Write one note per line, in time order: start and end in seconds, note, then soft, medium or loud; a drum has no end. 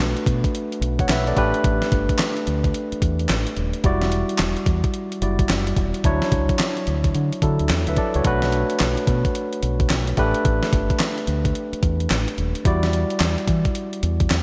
0.00 0.14 B1 medium
0.00 1.33 A3 medium
0.00 1.33 D4 medium
0.00 1.33 F#4 medium
0.00 0.80 B4 medium
0.17 closed hi-hat soft
0.26 0.41 B2 loud
0.26 kick medium
0.26 closed hi-hat medium
0.44 kick medium
0.44 closed hi-hat medium
0.55 closed hi-hat medium
0.72 closed hi-hat medium
0.81 1.05 B1 medium
0.81 closed hi-hat medium
0.99 1.10 C#5 medium
0.99 1.09 F#5 medium
0.99 kick medium
0.99 closed hi-hat medium
1.09 1.32 B1 medium
1.09 1.27 B4 medium
1.09 1.26 E5 medium
1.09 snare loud
1.09 clap medium
1.09 closed hi-hat medium
1.27 1.53 A4 medium
1.27 1.53 D5 medium
1.27 closed hi-hat medium
1.36 1.52 A1 loud
1.36 3.53 A3 medium
1.36 3.53 D4 medium
1.36 3.53 G4 medium
1.36 3.54 B4 medium
1.36 kick medium
1.36 closed hi-hat medium
1.54 closed hi-hat medium
1.64 1.79 A1 loud
1.64 kick loud
1.64 closed hi-hat medium
1.82 snare medium
1.82 closed hi-hat soft
1.92 2.07 G1 medium
1.92 kick loud
1.92 closed hi-hat medium
2.09 kick medium
2.09 closed hi-hat medium
2.19 snare loud
2.19 clap medium
2.19 closed hi-hat medium
2.37 closed hi-hat soft
2.47 2.70 D2 medium
2.47 closed hi-hat medium
2.64 kick medium
2.64 closed hi-hat medium
2.74 closed hi-hat medium
2.92 muted fingered electric bass stroke soft
2.92 closed hi-hat medium
3.02 3.25 E2 medium
3.02 kick medium
3.02 closed hi-hat medium
3.19 closed hi-hat soft
3.29 3.44 A1 medium
3.29 snare loud
3.29 clap medium
3.29 closed hi-hat medium
3.47 closed hi-hat medium
3.57 3.72 D#1 medium
3.57 closed hi-hat medium
3.73 closed hi-hat medium
3.84 4.22 E1 loud
3.84 5.19 G3 medium
3.84 5.19 E4 medium
3.84 5.20 F#4 medium
3.84 5.20 D5 medium
3.84 kick loud
3.84 closed hi-hat medium
4.02 snare medium
4.02 closed hi-hat soft
4.12 closed hi-hat medium
4.29 closed hi-hat medium
4.38 4.54 E1 medium
4.38 snare loud
4.38 clap medium
4.38 closed hi-hat medium
4.57 closed hi-hat soft
4.66 4.81 E2 loud
4.66 kick loud
4.66 closed hi-hat medium
4.84 kick medium
4.84 closed hi-hat medium
4.94 closed hi-hat medium
5.12 closed hi-hat medium
5.22 5.45 F#1 medium
5.22 6.04 G3 medium
5.22 6.04 E4 soft
5.22 6.05 F#4 soft
5.22 6.05 D5 medium
5.22 closed hi-hat medium
5.39 kick medium
5.39 closed hi-hat medium
5.49 5.73 F#1 medium
5.49 snare loud
5.49 clap medium
5.49 closed hi-hat medium
5.67 closed hi-hat medium
5.77 5.92 E1 medium
5.77 kick medium
5.77 closed hi-hat medium
5.94 closed hi-hat medium
6.04 6.19 D2 loud
6.04 7.39 F#3 medium
6.04 7.40 D4 medium
6.04 7.40 E4 medium
6.04 7.40 C#5 medium
6.04 kick loud
6.04 closed hi-hat medium
6.22 snare medium
6.22 closed hi-hat soft
6.32 6.47 C#2 medium
6.32 kick loud
6.32 closed hi-hat medium
6.49 kick medium
6.49 closed hi-hat medium
6.59 snare loud
6.59 clap medium
6.59 closed hi-hat medium
6.77 closed hi-hat soft
6.87 7.11 D2 medium
6.87 closed hi-hat medium
7.04 kick medium
7.04 closed hi-hat medium
7.15 7.30 D3 loud
7.15 closed hi-hat medium
7.33 closed hi-hat medium
7.42 7.57 D3 medium
7.42 8.25 F#3 medium
7.42 8.24 D4 soft
7.42 8.25 E4 medium
7.42 7.70 A4 medium
7.42 kick medium
7.42 closed hi-hat medium
7.59 7.68 D2 medium
7.59 closed hi-hat soft
7.69 7.85 E2 loud
7.69 snare loud
7.69 clap medium
7.69 closed hi-hat medium
7.87 7.96 D2 medium
7.87 7.98 B4 medium
7.87 7.97 E5 medium
7.87 closed hi-hat medium
7.96 8.15 A4 medium
7.96 8.14 D5 medium
7.96 kick medium
7.96 closed hi-hat medium
8.14 8.24 C#2 medium
8.14 8.25 F#4 medium
8.14 8.41 C#5 medium
8.14 closed hi-hat soft
8.24 8.63 B1 loud
8.24 10.14 A3 medium
8.24 10.14 D4 medium
8.24 10.14 F#4 medium
8.24 10.15 B4 medium
8.24 kick loud
8.24 closed hi-hat medium
8.42 snare medium
8.42 closed hi-hat soft
8.52 closed hi-hat medium
8.70 closed hi-hat medium
8.80 8.95 B1 medium
8.80 snare loud
8.80 clap medium
8.80 closed hi-hat medium
8.97 closed hi-hat soft
9.07 9.22 B2 medium
9.07 kick medium
9.07 closed hi-hat medium
9.25 kick medium
9.25 closed hi-hat medium
9.35 closed hi-hat medium
9.53 closed hi-hat medium
9.63 9.86 B1 medium
9.63 closed hi-hat medium
9.80 kick medium
9.80 closed hi-hat soft
9.89 10.14 B1 loud
9.89 snare loud
9.89 clap medium
9.89 closed hi-hat medium
10.07 closed hi-hat medium
10.17 10.32 A1 loud
10.17 12.33 A3 medium
10.17 12.34 D4 medium
10.17 12.34 G4 medium
10.17 12.35 B4 medium
10.17 kick medium
10.17 closed hi-hat medium
10.34 closed hi-hat medium
10.45 10.60 A1 loud
10.45 kick loud
10.45 closed hi-hat medium
10.63 snare medium
10.63 closed hi-hat medium
10.73 10.88 G1 medium
10.73 kick medium
10.73 closed hi-hat medium
10.90 kick medium
10.90 closed hi-hat medium
10.99 snare loud
10.99 clap medium
10.99 closed hi-hat medium
11.18 closed hi-hat soft
11.27 11.51 D2 medium
11.27 closed hi-hat medium
11.45 kick medium
11.45 closed hi-hat medium
11.55 closed hi-hat medium
11.73 muted fingered electric bass stroke soft
11.73 closed hi-hat medium
11.83 12.06 E2 medium
11.83 kick medium
11.83 closed hi-hat medium
12.00 closed hi-hat soft
12.10 12.25 A1 medium
12.10 snare loud
12.10 clap medium
12.10 closed hi-hat medium
12.28 closed hi-hat medium
12.38 12.53 D#1 medium
12.38 closed hi-hat medium
12.55 closed hi-hat medium
12.65 13.03 E2 loud
12.65 14.43 G3 medium
12.65 14.43 E4 medium
12.65 14.43 F#4 medium
12.65 14.43 D5 medium
12.65 kick loud
12.65 closed hi-hat medium
12.83 snare medium
12.83 closed hi-hat soft
12.93 closed hi-hat medium
13.10 closed hi-hat medium
13.20 13.35 E2 medium
13.20 snare loud
13.20 clap medium
13.20 closed hi-hat medium
13.38 closed hi-hat soft
13.48 13.62 E3 medium
13.48 kick medium
13.48 closed hi-hat medium
13.65 kick medium
13.65 closed hi-hat medium
13.75 closed hi-hat medium
13.93 closed hi-hat medium
14.03 14.26 E2 medium
14.03 closed hi-hat medium
14.20 kick medium
14.20 closed hi-hat medium
14.30 14.43 E2 loud
14.30 snare loud
14.30 clap medium
14.30 closed hi-hat medium